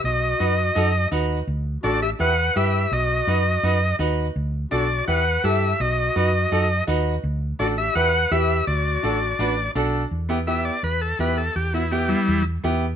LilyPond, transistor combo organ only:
\new Staff \with { instrumentName = "Transistor combo organ" } { \time 4/4 \key e \minor \tempo 4 = 167 dis''2. r4 | r4 d''8 e''8 fis''4 e''4 | dis''2. r4 | r4 d''4 fis''4 e''4 |
dis''2. r4 | r4 d''8 e''8 fis''4 e''4 | d''2. r4 | r4 e''8 d''8 b'8 a'8 b'8 a'8 |
g'8 e'8 g'8 <g e'>4 r4. | }